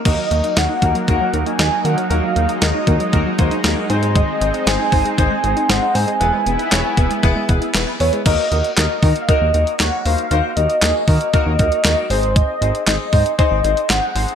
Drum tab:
CC |x---------------|----------------|----------------|----------------|
HH |x-xxx-xxx-xxx-xx|x-xxx-xxx-xxx-xx|x-xxx-oxx-xxx-ox|x-xxx-xxx-xxx-ox|
CP |----------------|----------------|----------------|----x-------x---|
SD |----o-------o---|----o-------o---|----o-------o---|----o-------o---|
BD |o-----o-o-------|------o-o-o-----|o-----o-o-------|------o-o-o-----|

CC |x---------------|----------------|----------------|
HH |x-xxx-oxx-xxx-ox|x-xxx-oxx-xxx-ox|x-xxx-oxx-xxx-ox|
CP |----x-------x---|----x-------x---|----x-------x---|
SD |----o-------o---|----o-------o---|----o-------o---|
BD |o-----o-o-------|------o-o-o-----|o-----o-o-------|